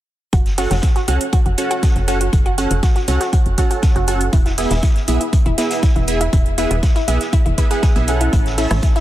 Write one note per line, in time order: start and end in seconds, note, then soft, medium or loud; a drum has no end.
0.33 0.67 F#1 medium
0.33 0.38 F#4 medium
0.33 kick loud
0.33 closed hi-hat soft
0.33 closed hi-hat medium
0.46 snare soft
0.46 closed hi-hat soft
0.58 0.74 C#4 medium
0.58 0.65 F#4 loud
0.58 0.74 F#4 medium
0.58 0.74 A4 medium
0.58 0.74 F#5 medium
0.58 snare medium
0.58 closed hi-hat medium
0.58 open hi-hat medium
0.71 0.81 F#1 loud
0.71 0.75 F#4 medium
0.71 snare medium
0.71 closed hi-hat medium
0.82 kick loud
0.82 snare loud
0.82 closed hi-hat soft
0.82 closed hi-hat medium
0.96 1.03 F#4 medium
0.96 snare soft
0.96 closed hi-hat soft
1.08 1.18 C#2 medium
1.08 1.18 C#4 medium
1.08 1.13 F#4 medium
1.08 1.18 F#4 medium
1.08 1.18 A4 medium
1.08 1.18 F#5 loud
1.08 closed hi-hat medium
1.21 closed hi-hat soft
1.32 1.40 F#4 loud
1.32 kick loud
1.32 closed hi-hat medium
1.32 closed hi-hat soft
1.46 1.56 F#1 medium
1.46 1.50 F#4 medium
1.46 closed hi-hat soft
1.58 2.05 C#4 medium
1.58 2.05 F#4 medium
1.58 2.05 A4 medium
1.58 2.05 F#5 loud
1.58 closed hi-hat medium
1.71 1.78 F#4 loud
1.71 closed hi-hat soft
1.83 1.88 F#4 medium
1.83 kick loud
1.83 snare loud
1.83 closed hi-hat medium
1.96 2.29 F#1 loud
1.96 closed hi-hat soft
2.08 2.18 C#4 loud
2.08 2.15 F#4 medium
2.08 2.18 F#4 medium
2.08 2.18 A4 medium
2.08 2.18 F#5 loud
2.08 closed hi-hat medium
2.21 2.25 F#4 medium
2.21 closed hi-hat medium
2.33 2.67 F#1 medium
2.33 kick loud
2.33 closed hi-hat medium
2.33 closed hi-hat soft
2.46 2.52 F#4 medium
2.46 closed hi-hat soft
2.58 2.74 C#4 medium
2.58 2.63 F#4 medium
2.58 2.74 F#4 medium
2.58 2.74 A4 medium
2.58 2.74 F#5 medium
2.58 closed hi-hat medium
2.71 2.81 F#1 medium
2.71 closed hi-hat medium
2.83 2.90 F#4 medium
2.83 kick loud
2.83 snare loud
2.83 closed hi-hat medium
2.95 3.00 F#4 medium
2.95 snare soft
2.95 closed hi-hat soft
3.08 3.18 C#2 medium
3.08 3.18 C#4 medium
3.08 3.18 F#4 medium
3.08 3.18 A4 medium
3.08 3.18 F#5 loud
3.08 closed hi-hat medium
3.21 3.27 F#4 medium
3.21 snare soft
3.21 closed hi-hat soft
3.33 3.38 F#4 medium
3.33 kick loud
3.33 closed hi-hat soft
3.33 closed hi-hat medium
3.46 3.56 F#1 medium
3.46 closed hi-hat soft
3.58 4.05 C#4 medium
3.58 3.65 F#4 loud
3.58 4.05 F#4 medium
3.58 4.05 A4 medium
3.58 4.05 F#5 medium
3.58 kick medium
3.58 closed hi-hat medium
3.71 3.75 F#4 medium
3.71 closed hi-hat soft
3.82 kick loud
3.82 snare loud
3.82 closed hi-hat medium
3.82 closed hi-hat soft
3.96 4.29 F#1 loud
3.96 4.02 F#4 loud
3.96 closed hi-hat soft
4.08 4.18 C#4 medium
4.08 4.13 F#4 medium
4.08 4.18 F#4 medium
4.08 4.18 A4 medium
4.08 4.18 F#5 loud
4.08 closed hi-hat medium
4.21 closed hi-hat medium
4.33 4.67 E1 medium
4.33 4.40 E4 medium
4.33 kick loud
4.33 closed hi-hat medium
4.33 closed hi-hat soft
4.45 4.50 E4 medium
4.45 snare soft
4.45 closed hi-hat soft
4.58 4.74 B3 medium
4.58 4.74 E4 medium
4.58 4.74 G#4 medium
4.58 4.74 E5 medium
4.58 snare soft
4.58 closed hi-hat medium
4.58 open hi-hat medium
4.71 4.81 E1 loud
4.71 4.77 E4 loud
4.71 snare medium
4.71 closed hi-hat soft
4.83 4.88 E4 medium
4.83 kick loud
4.83 snare loud
4.83 closed hi-hat soft
4.83 closed hi-hat medium
4.96 snare soft
4.96 closed hi-hat soft
5.08 5.18 B1 medium
5.08 5.18 B3 medium
5.08 5.15 E4 medium
5.08 5.18 E4 medium
5.08 5.18 G#4 medium
5.08 5.18 E5 loud
5.08 closed hi-hat medium
5.21 5.25 E4 medium
5.21 closed hi-hat soft
5.33 kick loud
5.33 closed hi-hat medium
5.33 closed hi-hat soft
5.46 5.56 E1 medium
5.46 5.53 E4 loud
5.46 closed hi-hat soft
5.58 6.05 B3 medium
5.58 5.63 E4 medium
5.58 6.05 E4 medium
5.58 6.05 G#4 medium
5.58 6.05 E5 loud
5.58 snare loud
5.58 closed hi-hat medium
5.70 snare loud
5.70 closed hi-hat soft
5.70 closed hi-hat medium
5.83 5.90 E4 loud
5.83 kick loud
5.83 snare loud
5.83 closed hi-hat medium
5.83 closed hi-hat soft
5.96 6.29 E1 loud
5.96 6.00 E4 medium
5.96 closed hi-hat soft
6.07 6.18 B3 medium
6.07 6.18 E4 medium
6.07 6.18 G#4 medium
6.07 6.18 E5 loud
6.07 closed hi-hat medium
6.21 6.28 E4 medium
6.21 closed hi-hat soft
6.33 6.67 E1 medium
6.33 6.38 E4 medium
6.33 kick loud
6.33 closed hi-hat medium
6.33 closed hi-hat soft
6.46 closed hi-hat soft
6.58 6.74 B3 medium
6.58 6.74 E4 medium
6.58 6.65 E4 loud
6.58 6.74 G#4 medium
6.58 6.74 E5 medium
6.58 closed hi-hat medium
6.71 6.81 E1 loud
6.71 6.75 E4 medium
6.71 closed hi-hat soft
6.83 kick loud
6.83 snare loud
6.83 closed hi-hat medium
6.83 closed hi-hat soft
6.96 7.03 E4 loud
6.96 snare soft
6.96 closed hi-hat soft
7.08 7.18 B1 medium
7.08 7.18 B3 medium
7.08 7.13 E4 medium
7.08 7.18 E4 medium
7.08 7.18 G#4 medium
7.08 7.18 E5 loud
7.08 closed hi-hat medium
7.21 snare soft
7.21 closed hi-hat soft
7.33 7.40 E4 loud
7.33 kick loud
7.33 closed hi-hat medium
7.33 closed hi-hat soft
7.46 7.56 E1 medium
7.46 7.50 E4 medium
7.46 closed hi-hat soft
7.58 7.68 B3 medium
7.58 7.68 E4 medium
7.58 7.68 G#4 medium
7.58 7.61 B4 medium
7.58 7.68 E5 loud
7.58 kick medium
7.58 closed hi-hat medium
7.70 7.87 B3 medium
7.70 7.87 E4 medium
7.70 7.75 G#4 medium
7.70 7.87 G#4 medium
7.70 7.87 F#5 loud
7.70 closed hi-hat soft
7.83 7.86 G#4 medium
7.83 kick loud
7.83 snare loud
7.83 closed hi-hat soft
7.83 closed hi-hat medium
7.96 8.29 B1 medium
7.96 8.06 B3 medium
7.96 8.06 E4 medium
7.96 8.06 G#4 medium
7.96 8.06 E5 medium
7.96 closed hi-hat soft
8.07 8.55 C#4 medium
8.07 8.55 E4 medium
8.07 8.15 G#4 medium
8.07 8.55 A4 medium
8.07 8.55 F#5 medium
8.07 closed hi-hat medium
8.21 8.23 E4 medium
8.21 closed hi-hat soft
8.33 8.67 A1 medium
8.33 8.38 E4 medium
8.33 kick loud
8.33 closed hi-hat soft
8.33 closed hi-hat medium
8.46 snare soft
8.46 closed hi-hat soft
8.58 8.74 C#4 medium
8.58 8.74 E4 medium
8.58 8.65 E4 loud
8.58 8.74 A4 medium
8.58 8.74 E5 medium
8.58 snare medium
8.58 closed hi-hat medium
8.58 open hi-hat medium
8.71 8.81 A1 loud
8.71 8.75 E4 medium
8.71 cross-stick medium
8.71 snare medium
8.71 closed hi-hat soft
8.82 kick loud
8.82 snare loud
8.82 closed hi-hat medium
8.82 closed hi-hat soft
8.96 9.00 E4 loud
8.96 snare soft
8.96 closed hi-hat soft